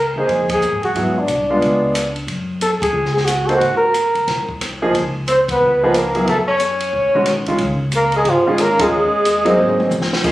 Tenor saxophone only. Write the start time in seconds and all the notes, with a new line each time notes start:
5.28 C4
5.51 B3
5.84 B3
5.97 A#3
6.28 A3
6.48 C#4
7.96 A#3
8.16 G#3
8.29 F3
8.48 G#3
8.60 A#3
8.81 G#3